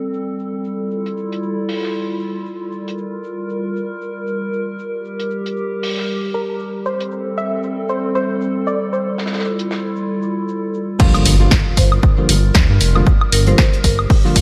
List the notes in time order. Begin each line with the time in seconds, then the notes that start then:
Already playing: G3 C4 A4
0.14 shaker
0.39 shaker
0.65 E4 F4, shaker
0.91 shaker
1.06 closed hi-hat
1.17 shaker
1.32 closed hi-hat
1.43 shaker
1.69 open hi-hat
1.83 snare
1.94 shaker
2.20 shaker
2.46 shaker
2.72 A#4, shaker
2.88 closed hi-hat
2.98 shaker
3.24 shaker
3.50 shaker
3.76 shaker
4.02 shaker
4.27 shaker
4.53 shaker
4.79 G4, shaker
5.05 shaker
5.20 closed hi-hat
5.30 shaker
5.46 closed hi-hat
5.57 shaker
5.83 open hi-hat
5.97 snare
6.07 shaker
6.34 A#4, shaker
6.59 shaker
6.85 G3 C4 A4 C5, shaker
7.00 closed hi-hat
7.11 shaker
7.38 E5, shaker
7.63 shaker
7.89 C5, shaker
8.15 C5, shaker
8.41 shaker
8.67 D5, shaker
8.93 E4 F4 C5, shaker
9.18 snare, shaker
9.26 snare, shaker
9.33 snare, shaker
9.39 snare, shaker
9.45 shaker
9.59 closed hi-hat
9.71 snare, shaker
9.96 shaker
10.22 shaker
10.48 shaker
10.74 shaker
10.99 D3 F3 G3 A#3 F4 A#4, kick, crash, impact, shaker
11.14 closed hi-hat, high woodblock
11.26 G1, open hi-hat
11.40 D3 F3 G3 A#3 F4
11.51 kick, snare, shaker
11.77 G1 C5, kick, open hi-hat
11.92 high woodblock
12.03 kick, shaker
12.17 D3 F3 G3 A#3 F4
12.29 G1, open hi-hat
12.54 D2, kick, snare
12.70 G2
12.81 F1, open hi-hat
12.95 D3 F3 G3 A#3 F4, high woodblock
13.07 G4, kick, shaker
13.21 high woodblock
13.32 G1 A#4, open hi-hat
13.47 D3 F3 G3 A#3 F4 C5, closed hi-hat
13.58 C5, kick, snare, shaker
13.73 closed hi-hat
13.84 G1 A#4, kick, open hi-hat
13.99 high woodblock
14.10 kick, open hi-hat
14.24 D3 F3 G3 A#3 F4, snare
14.36 G1, kick, open hi-hat